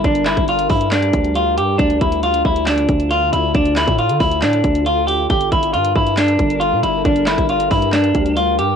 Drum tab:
HH |xxxxxxoxxxxxx-x-|xxxxxx-xxxxxx-x-|xxxxxxoxxxxxx-x-|xxxxxx-xxxxxx-x-|
CP |--x-----x-------|--------x-------|--x-----x-------|--------x-------|
SD |--o-----o-------|--------o-------|--o-----o-------|--------o-------|
BD |o--o--o---o-----|o-o---o---o-----|o--o--o---o-----|o-o---o---o-----|

HH |xxxxxxoxxxxxx-x-|
CP |--x-----x-------|
SD |--o-----o-------|
BD |o--o--o---o-----|